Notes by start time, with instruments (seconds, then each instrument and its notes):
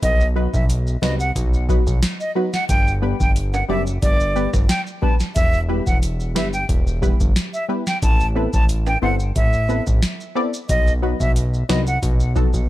0.03 analog synth bass B1, flute D#5, kick, closed hi-hat, maracas
0.20 maracas
0.35 synth stab F#3 B3 D#4 F#4 B4
0.54 analog synth bass B1, flute E5, kick, maracas
0.70 closed hi-hat, maracas
0.87 maracas
1.02 analog synth bass C2, synth stab F#3 B3 D#4 F#4 B4, flute D#5, snare
1.20 flute F#5, maracas
1.36 analog synth bass B1, kick, closed hi-hat, maracas
1.54 maracas
1.69 synth stab F#3 B3 D#4 F#4 B4, kick, maracas
1.87 analog synth bass B1, kick, maracas
2.03 snare, closed hi-hat, maracas
2.20 flute D#5, maracas
2.35 synth stab F#3 B3 D#4 F#4 B4
2.53 flute F#5, snare, maracas
2.69 analog synth bass G1, flute G5, kick, closed hi-hat, maracas
2.87 maracas
3.02 synth stab G3 B3 D4 G4 B4
3.20 analog synth bass G1, flute G5, kick, maracas
3.36 closed hi-hat, maracas
3.53 flute F#5, high timbale, maracas
3.69 analog synth bass F#1, synth stab G3 B3 D4 G4 D5, flute E5
3.87 maracas
4.02 analog synth bass G1, flute D5, kick, closed hi-hat, maracas
4.20 maracas
4.35 synth stab G3 B3 D4 G4 B4, maracas
4.53 analog synth bass G1, kick, cross-stick, maracas
4.69 flute G5, snare, closed hi-hat, maracas
4.87 maracas
5.02 synth stab G3 B3 D4 G4 B4, flute A5, kick
5.20 snare, maracas
5.35 analog synth bass E1, flute E5, kick, closed hi-hat, maracas
5.53 maracas
5.69 synth stab G3 B3 E4 G4 B4
5.87 analog synth bass E1, flute F#5, kick, maracas
6.03 closed hi-hat, maracas
6.20 maracas
6.35 analog synth bass G1, synth stab G3 B3 E4 G4 B4, flute E5, snare
6.53 flute G5, maracas
6.69 analog synth bass E1, kick, closed hi-hat, maracas
6.87 maracas
7.02 synth stab G3 B3 E4 G4 B4, kick, maracas
7.20 analog synth bass G1, kick, maracas
7.36 snare, closed hi-hat, maracas
7.54 flute E5, maracas
7.69 synth stab G3 B3 E4 G4 B4
7.87 flute G5, snare, maracas
8.02 analog synth bass A1, flute A5, kick, closed hi-hat, maracas
8.20 maracas
8.35 synth stab B3 C4 E4 A4 B4
8.53 analog synth bass A1, flute A5, kick, maracas
8.69 closed hi-hat, maracas
8.87 flute G5, high timbale, maracas
9.02 analog synth bass G1, synth stab B3 C4 E4 A4 C5, flute F#5
9.20 maracas
9.36 analog synth bass A1, flute E5, kick, closed hi-hat, maracas
9.53 maracas
9.69 synth stab B3 C4 E4 A4 B4, maracas
9.87 analog synth bass A1, kick, maracas
10.02 snare, closed hi-hat, maracas
10.20 maracas
10.35 synth stab B3 C4 E4 A4 D5
10.54 maracas
10.69 analog synth bass B1, flute D#5, kick, closed hi-hat, maracas
10.87 maracas
11.02 synth stab F#3 B3 D#4 F#4 B4
11.20 analog synth bass B1, flute E5, kick, maracas
11.36 closed hi-hat, maracas
11.54 maracas
11.69 analog synth bass C2, synth stab F#3 B3 D#4 F#4 B4, flute D#5, snare
11.87 flute F#5, maracas
12.03 analog synth bass B1, kick, closed hi-hat, maracas
12.20 maracas
12.36 synth stab F#3 B3 D#4 F#4 A4, kick, maracas
12.54 analog synth bass B1, kick, maracas